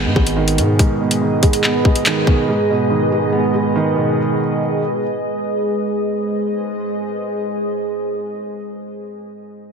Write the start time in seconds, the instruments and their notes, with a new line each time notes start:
Already playing: felt piano G#2 B2 D#3 G#3 B3, ambient pad G#3 G#4 B4 D#5
0.05 808-style bass G#2
0.15 808-style bass G#1, felt piano G#3, kick
0.27 closed hi-hat
0.37 felt piano D#3
0.48 closed hi-hat
0.58 808-style bass G#2, felt piano B2, closed hi-hat
0.79 felt piano G#2, kick, closed hi-hat
1.01 felt piano B2
1.11 closed hi-hat
1.22 felt piano D#3
1.43 felt piano G#3, kick, closed hi-hat
1.53 closed hi-hat
1.64 felt piano B3, clap
1.85 felt piano G#3, kick
1.96 closed hi-hat
2.06 felt piano D#3, clap, closed hi-hat
2.27 felt piano B2, kick
2.48 felt piano G#2
2.70 felt piano B2
2.90 felt piano D#3
3.12 felt piano G#3
3.32 felt piano B3
3.54 felt piano G#3
3.76 felt piano D#3
3.96 felt piano B2
5.86 ambient pad G#3 G#4 C5 D#5